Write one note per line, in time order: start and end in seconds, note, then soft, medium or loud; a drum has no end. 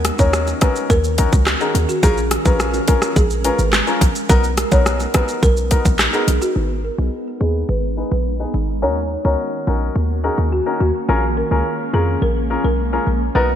0.00 0.11 D#2 loud
0.00 2.01 D#3 medium
0.00 4.26 C#4 medium
0.00 2.01 F#4 medium
0.00 6.52 A#4 medium
0.05 cross-stick medium
0.05 closed hi-hat medium
0.05 high bongo medium
0.05 shaker medium
0.19 0.54 D#2 loud
0.19 0.58 C#4 medium
0.19 0.58 D#4 medium
0.19 0.58 F#4 medium
0.19 0.58 A#4 medium
0.19 0.30 C#5 medium
0.19 kick loud
0.19 shaker medium
0.33 cross-stick loud
0.33 shaker medium
0.47 high bongo medium
0.47 shaker medium
0.61 0.88 C#4 medium
0.61 0.88 D#4 medium
0.61 0.88 F#4 medium
0.61 0.88 A#4 medium
0.61 0.73 B4 medium
0.61 kick loud
0.61 cross-stick medium
0.61 closed hi-hat medium
0.61 low bongo medium
0.61 shaker medium
0.76 shaker medium
0.90 1.25 D#2 loud
0.90 1.30 A#4 loud
0.90 kick medium
0.90 high bongo medium
0.90 shaker medium
1.04 shaker medium
1.18 1.32 C#4 medium
1.18 1.32 D#4 medium
1.18 1.32 F#4 medium
1.18 1.32 A#4 medium
1.18 kick medium
1.18 closed hi-hat medium
1.18 shaker medium
1.32 1.56 C#2 loud
1.32 kick medium
1.32 shaker medium
1.46 cross-stick loud
1.46 clap loud
1.46 high bongo medium
1.46 shaker medium
1.61 1.74 C#4 medium
1.61 1.75 D#4 medium
1.61 1.75 F#4 medium
1.61 1.72 G#4 medium
1.61 1.75 A#4 medium
1.61 shaker medium
1.75 1.86 D#2 medium
1.75 closed hi-hat medium
1.75 low bongo medium
1.75 shaker medium
1.89 2.00 F#4 medium
1.89 shaker medium
2.03 2.38 A#1 loud
2.03 4.27 G#3 medium
2.03 2.17 C#4 loud
2.03 2.17 F4 medium
2.03 2.25 G#4 loud
2.03 2.17 G#4 medium
2.03 2.17 A#4 loud
2.03 kick loud
2.03 high bongo medium
2.03 shaker medium
2.17 shaker medium
2.31 cross-stick medium
2.31 closed hi-hat medium
2.31 high bongo soft
2.31 shaker medium
2.45 2.80 A#1 medium
2.45 2.85 C#4 medium
2.45 2.85 F4 medium
2.45 2.85 G#4 medium
2.45 2.85 A#4 medium
2.45 2.57 B4 medium
2.45 kick loud
2.45 shaker medium
2.60 cross-stick loud
2.60 shaker medium
2.74 high bongo medium
2.74 shaker medium
2.88 3.14 C#4 medium
2.88 3.14 F4 medium
2.88 3.14 G#4 medium
2.88 2.99 A#4 medium
2.88 3.14 A#4 medium
2.88 kick loud
2.88 closed hi-hat medium
2.88 low bongo medium
2.88 shaker medium
3.02 cross-stick loud
3.02 shaker medium
3.16 3.51 A#1 loud
3.16 3.28 G#4 medium
3.16 kick loud
3.16 high bongo medium
3.16 shaker medium
3.30 shaker medium
3.44 3.58 C#4 medium
3.44 3.58 F4 medium
3.44 3.59 G#4 medium
3.44 3.59 A#4 medium
3.44 3.56 B4 medium
3.44 closed hi-hat medium
3.44 shaker medium
3.59 3.82 G#1 medium
3.59 shaker medium
3.73 cross-stick loud
3.73 clap loud
3.73 high bongo medium
3.73 shaker medium
3.87 4.01 C#4 medium
3.87 4.01 F4 medium
3.87 4.01 G#4 medium
3.87 4.01 A#4 medium
3.87 shaker medium
4.01 4.13 A#1 loud
4.01 kick loud
4.01 closed hi-hat medium
4.01 low bongo medium
4.01 shaker medium
4.15 shaker medium
4.29 4.64 B1 loud
4.29 4.43 B3 loud
4.29 6.54 B3 medium
4.29 4.43 D#4 medium
4.29 6.54 D#4 loud
4.29 4.43 F#4 medium
4.29 4.41 A#4 loud
4.29 4.44 A#4 loud
4.29 kick loud
4.29 high bongo medium
4.29 shaker medium
4.44 shaker medium
4.57 cross-stick medium
4.57 closed hi-hat medium
4.57 high bongo soft
4.57 shaker medium
4.71 5.07 B1 medium
4.71 5.11 B3 medium
4.71 5.11 D#4 medium
4.71 5.11 F#4 medium
4.71 5.11 A#4 medium
4.71 4.83 C#5 medium
4.71 kick loud
4.71 high bongo medium
4.71 shaker medium
4.86 cross-stick loud
4.86 shaker medium
5.00 high bongo medium
5.00 shaker medium
5.14 5.40 B3 medium
5.14 5.41 D#4 medium
5.14 5.41 F#4 medium
5.14 5.41 A#4 medium
5.14 5.25 B4 medium
5.14 kick loud
5.14 cross-stick loud
5.14 closed hi-hat medium
5.14 low bongo medium
5.14 shaker soft
5.28 shaker medium
5.43 5.77 B1 loud
5.43 5.83 A#4 loud
5.43 kick loud
5.43 high bongo medium
5.43 shaker medium
5.57 shaker medium
5.71 5.85 B3 medium
5.71 5.85 D#4 medium
5.71 5.85 F#4 medium
5.71 5.85 A#4 medium
5.71 kick loud
5.71 closed hi-hat medium
5.71 shaker medium
5.85 6.09 A#1 medium
5.85 kick medium
5.85 high bongo medium
5.85 shaker medium
5.99 cross-stick loud
5.99 clap loud
5.99 high bongo medium
5.99 shaker medium
6.13 6.27 B3 medium
6.13 6.27 D#4 medium
6.13 6.27 F#4 medium
6.13 6.24 G#4 medium
6.13 6.27 A#4 medium
6.13 shaker medium
6.28 6.39 B1 medium
6.28 closed hi-hat medium
6.28 low bongo medium
6.28 shaker medium
6.42 6.53 F#4 medium
6.42 shaker medium
6.56 6.91 G#1 loud
6.56 8.80 G#3 medium
6.56 6.70 B3 medium
6.56 8.80 B3 medium
6.56 8.80 D#4 medium
6.56 6.70 D#4 medium
6.56 6.70 G#4 medium
6.56 6.70 B4 loud
6.84 6.95 A#4 medium
6.98 7.10 B1 medium
6.98 7.37 B3 medium
6.98 7.38 D#4 medium
6.98 7.38 G#4 medium
6.98 7.38 B4 medium
7.41 7.64 D#2 medium
7.41 7.67 B3 medium
7.41 7.67 D#4 medium
7.41 7.63 G#4 medium
7.41 7.67 G#4 medium
7.41 7.67 B4 medium
7.69 8.04 G#1 loud
7.69 7.80 B4 medium
7.97 8.11 B3 medium
7.97 8.11 D#4 medium
7.97 8.11 G#4 medium
7.97 8.11 B4 medium
8.12 8.46 A#1 medium
8.12 8.23 B4 medium
8.40 8.54 B3 medium
8.40 8.54 D#4 medium
8.40 8.54 G#4 medium
8.40 8.54 B4 medium
8.54 8.84 G#1 medium
8.82 9.17 D#2 loud
8.82 11.06 D#3 medium
8.82 13.31 A#3 medium
8.82 8.96 C#4 medium
8.82 13.31 C#4 medium
8.82 8.96 D#4 medium
8.82 11.06 F#4 medium
8.82 8.96 F#4 medium
8.82 8.96 A#4 loud
8.82 8.93 C#5 loud
9.24 9.36 C#2 medium
9.24 9.64 C#4 medium
9.24 9.64 D#4 medium
9.24 9.64 F#4 medium
9.24 9.64 A#4 medium
9.24 9.36 C#5 medium
9.67 9.90 A#1 medium
9.67 9.93 C#4 medium
9.67 9.93 D#4 medium
9.67 9.93 F#4 medium
9.67 9.79 A#4 medium
9.67 9.94 A#4 medium
9.96 10.30 D#2 loud
10.24 10.38 C#4 medium
10.24 10.38 D#4 medium
10.24 10.38 F#4 medium
10.24 10.35 G#4 medium
10.24 10.38 A#4 medium
10.38 10.61 D#2 medium
10.52 10.63 F#4 medium
10.66 10.80 C#4 medium
10.66 10.80 D#4 medium
10.66 10.80 F#4 medium
10.66 10.80 A#4 medium
10.80 10.92 D#2 medium
10.80 10.92 F#4 medium
11.09 11.44 A#1 loud
11.09 13.33 G#3 medium
11.09 11.22 C#4 loud
11.09 11.23 F4 medium
11.09 11.23 G#4 medium
11.09 11.23 A#4 loud
11.37 11.48 A#4 medium
11.51 11.63 C#2 medium
11.51 11.90 C#4 medium
11.51 11.90 F4 medium
11.51 11.90 G#4 medium
11.51 11.91 A#4 medium
11.94 12.17 F2 medium
11.94 12.20 C#4 medium
11.94 12.20 F4 medium
11.94 12.20 G#4 medium
11.94 12.16 G#4 medium
11.94 12.20 A#4 medium
12.22 12.57 A#1 loud
12.22 12.33 A#4 medium
12.50 12.64 C#4 medium
12.50 12.64 F4 medium
12.50 12.64 G#4 medium
12.50 12.64 A#4 medium
12.64 12.99 B1 medium
12.64 12.76 A#4 medium
12.93 13.06 C#4 medium
12.93 13.07 F4 medium
12.93 13.07 G#4 medium
12.93 13.07 A#4 medium
13.07 13.30 A#1 medium
13.35 13.56 B1 loud
13.35 13.49 B3 medium
13.35 13.49 D#4 medium
13.35 13.49 F#4 medium
13.35 13.49 A#4 loud
13.35 13.46 B4 loud
13.35 riser medium